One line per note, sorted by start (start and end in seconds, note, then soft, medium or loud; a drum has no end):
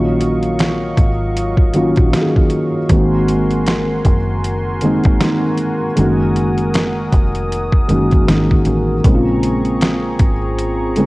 0.00 0.94 A#1 loud
0.00 1.08 D#3 medium
0.00 1.08 F#3 medium
0.00 2.86 F#3 medium
0.00 1.08 A#3 medium
0.00 1.09 C#4 medium
0.00 1.09 F4 loud
0.00 2.87 D#5 medium
0.00 2.86 F5 medium
0.00 2.86 C#6 medium
0.21 closed hi-hat medium
0.43 closed hi-hat soft
0.59 snare loud
0.59 closed hi-hat medium
0.97 1.93 G#1 loud
0.97 kick medium
0.97 closed hi-hat medium
1.37 closed hi-hat medium
1.57 kick medium
1.73 2.06 D#3 medium
1.73 2.07 F#3 medium
1.73 2.07 A#3 medium
1.73 2.07 C#4 medium
1.73 2.08 F4 medium
1.73 closed hi-hat medium
1.96 2.11 A#1 medium
1.96 kick medium
1.96 closed hi-hat soft
2.12 2.77 D#3 medium
2.12 2.77 F#3 medium
2.12 2.78 A#3 medium
2.12 2.78 C#4 medium
2.12 2.21 F#4 medium
2.12 snare loud
2.12 closed hi-hat medium
2.21 2.82 G#4 medium
2.36 kick medium
2.50 closed hi-hat medium
2.89 4.01 G#1 loud
2.89 4.16 D#3 loud
2.89 4.16 G#3 medium
2.89 4.16 A#3 medium
2.89 4.17 C4 medium
2.89 9.01 F#4 medium
2.89 4.17 F#4 loud
2.89 9.01 A#4 medium
2.89 9.01 G#5 medium
2.89 5.94 C6 medium
2.89 kick loud
2.89 closed hi-hat medium
3.28 closed hi-hat medium
3.51 closed hi-hat soft
3.66 snare loud
3.66 closed hi-hat medium
4.05 5.01 F#1 loud
4.05 kick medium
4.05 closed hi-hat medium
4.44 closed hi-hat medium
4.81 5.14 D#3 medium
4.81 5.15 G#3 medium
4.81 5.15 A#3 medium
4.81 5.15 C4 medium
4.81 5.16 D#4 loud
4.81 closed hi-hat medium
5.04 5.19 G#1 medium
5.04 kick medium
5.04 closed hi-hat soft
5.20 5.85 D#3 medium
5.20 5.85 G#3 medium
5.20 5.86 A#3 medium
5.20 5.86 C4 medium
5.20 5.86 D#4 medium
5.20 snare loud
5.20 closed hi-hat medium
5.58 closed hi-hat medium
5.96 7.09 F#1 loud
5.96 7.23 D#3 medium
5.96 7.23 G#3 medium
5.96 6.05 A3 medium
5.96 7.24 C#4 medium
5.96 7.24 F#4 medium
5.96 9.02 D#6 medium
5.96 closed hi-hat medium
6.03 7.27 A#3 medium
6.36 closed hi-hat medium
6.58 closed hi-hat soft
6.74 snare loud
6.74 closed hi-hat medium
7.12 7.80 F1 medium
7.12 kick loud
7.12 closed hi-hat medium
7.35 closed hi-hat soft
7.52 closed hi-hat medium
7.72 kick medium
7.88 8.24 F#1 loud
7.88 8.21 D#3 medium
7.88 8.22 G#3 medium
7.88 8.22 A#3 medium
7.88 8.22 C#4 medium
7.88 8.23 F#4 medium
7.88 closed hi-hat medium
8.11 kick medium
8.11 closed hi-hat soft
8.28 8.62 G#1 loud
8.28 8.93 D#3 medium
8.28 8.93 G#3 medium
8.28 8.93 A#3 medium
8.28 8.94 C#4 medium
8.28 8.94 F#4 medium
8.28 snare loud
8.28 closed hi-hat medium
8.51 kick medium
8.65 9.00 A1 loud
8.65 closed hi-hat medium
9.04 10.16 A#1 loud
9.04 10.31 C#3 medium
9.04 10.31 G#3 medium
9.04 10.32 A#3 medium
9.04 11.06 C4 medium
9.04 10.32 C4 medium
9.04 9.14 D#4 medium
9.04 11.06 G#4 medium
9.04 11.06 A#5 medium
9.04 11.06 C#6 medium
9.04 kick loud
9.04 closed hi-hat medium
9.14 10.36 F4 loud
9.43 closed hi-hat medium
9.65 closed hi-hat soft
9.81 snare loud
9.81 closed hi-hat medium
10.19 11.06 G#1 medium
10.19 kick loud
10.19 closed hi-hat medium
10.59 closed hi-hat medium
10.96 11.06 C#3 medium
10.96 11.06 G#3 medium
10.96 11.06 A#3 medium
10.96 11.06 C4 medium
10.96 11.06 G#4 medium
10.96 closed hi-hat medium